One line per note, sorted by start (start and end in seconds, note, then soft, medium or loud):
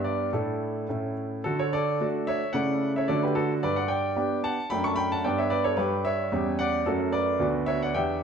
0.00 0.32 G2 medium
0.00 0.29 B3 soft
0.00 0.30 D4 soft
0.00 0.30 G4 soft
0.04 0.30 D5 medium
0.33 0.87 A2 medium
0.33 0.86 A3 soft
0.33 0.86 D4 soft
0.33 0.86 E4 soft
0.33 1.13 A4 medium
0.89 1.43 A2 soft
0.89 1.41 A3 soft
0.89 1.41 C#4 soft
0.89 1.42 E4 soft
1.44 1.98 D3 medium
1.44 1.58 F#4 medium
1.44 1.58 A4 medium
1.59 1.73 A4 medium
1.59 1.73 C#5 medium
1.73 2.24 A4 medium
1.73 2.06 D5 medium
2.00 2.39 A3 soft
2.00 2.40 D4 soft
2.00 2.40 F#4 medium
2.27 2.53 C#5 medium
2.27 2.52 E5 medium
2.53 3.07 C#3 medium
2.53 3.05 A3 soft
2.53 3.05 E4 soft
2.53 3.05 A4 soft
2.53 2.92 D5 medium
2.53 2.90 F#5 medium
2.96 3.09 C#5 medium
2.96 3.09 E5 medium
3.08 3.62 D3 medium
3.08 3.59 A3 soft
3.08 3.59 D4 soft
3.08 3.34 F#4 soft
3.08 3.22 A4 medium
3.08 3.22 D5 medium
3.23 3.36 G4 medium
3.23 3.36 B4 medium
3.35 3.61 F#4 medium
3.35 3.52 A4 medium
3.63 4.16 G2 medium
3.63 3.76 B4 medium
3.63 3.76 D5 medium
3.76 3.88 D5 medium
3.76 3.90 F#5 medium
3.88 4.40 D5 medium
3.88 4.39 G5 medium
4.16 4.55 B3 soft
4.16 4.55 D4 soft
4.16 4.56 G4 soft
4.44 4.70 F#5 medium
4.44 4.68 A5 medium
4.70 5.24 F#2 medium
4.70 5.21 A3 soft
4.70 5.22 D4 soft
4.70 4.84 G5 medium
4.70 4.84 B5 medium
4.84 4.98 A5 medium
4.84 4.98 C#6 medium
4.96 5.10 G5 medium
4.96 5.11 B5 medium
5.12 5.25 F#5 medium
5.12 5.25 A5 medium
5.24 5.76 G2 medium
5.24 5.75 B3 soft
5.24 5.75 D4 soft
5.24 5.76 G4 soft
5.24 5.38 D5 medium
5.24 5.38 G5 medium
5.38 5.52 C#5 medium
5.38 5.52 E5 medium
5.50 5.64 B4 medium
5.50 5.65 D5 medium
5.64 5.78 A4 medium
5.64 5.78 C#5 medium
5.77 6.30 G2 medium
5.77 6.28 G3 soft
5.77 6.28 D4 soft
5.77 6.03 G4 medium
5.77 6.05 B4 medium
6.05 6.56 C#5 medium
6.05 6.59 E5 medium
6.32 6.85 E2 medium
6.32 6.82 G3 soft
6.32 6.83 C#4 soft
6.32 6.83 G4 soft
6.59 6.85 D5 medium
6.59 6.84 F#5 medium
6.86 7.39 F#2 medium
6.86 7.37 A3 soft
6.86 7.37 C#4 soft
6.86 7.12 F#4 medium
6.86 7.11 A4 medium
7.12 7.64 B4 medium
7.12 7.45 D5 medium
7.39 7.93 D2 medium
7.39 7.91 B3 soft
7.39 7.91 D4 soft
7.39 7.91 F#4 soft
7.66 7.80 C#5 medium
7.66 7.81 E5 medium
7.82 7.96 D5 medium
7.82 7.96 F#5 medium
7.94 8.23 E2 medium
7.94 8.23 B3 soft
7.94 8.23 D4 soft
7.94 8.23 G4 soft
7.94 8.23 E5 medium
7.94 8.23 G5 medium